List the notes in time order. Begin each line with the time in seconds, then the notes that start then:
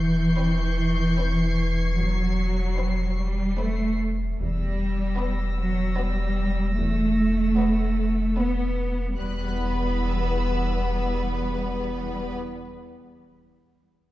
Already playing: E1 E2 E3 C#6 G6 C7
0.38 C4 B4
1.18 C4 B4
1.67 G#6
1.98 E2 F#3
2.78 C4 B4
3.19 G3
3.58 A3 C4 B4
4.39 E1 E2 G3 E6 A#6
5.18 B3 B4
5.59 F#3
5.98 G3 B3 B4
6.79 E2 A3
7.59 B3 B4
8.38 B3 B4
9.18 E1 E2 G3 B3 B4 B5 F#6
9.99 E6